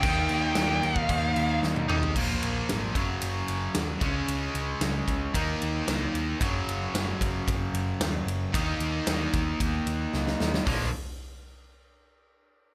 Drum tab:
CC |x-x-x-x-x-x-----|x---------------|----------------|----------------|
RD |----------------|--x-x-x-x-x-x-x-|x-x-x-x-x-x-x-x-|x-x-x-x-x-x-x-x-|
HH |----------------|----------------|----------------|----------------|
SD |----o-------o---|----o-------o---|----o-------o---|----o-------o---|
T1 |-------------o--|----------------|----------------|----------------|
T2 |--------------o-|----------------|----------------|----------------|
FT |---------------o|----------------|----------------|----------------|
BD |o------oo-------|o-----o-------o-|------o-o-------|o-----o-o-------|

CC |----------------|----------------|
RD |x-x-x-x-x-x-----|----------------|
HH |----------------|o---------------|
SD |----o-------oooo|----------------|
T1 |----------------|----------------|
T2 |----------------|----------------|
FT |----------------|o---------------|
BD |o-----o-o-------|o---------------|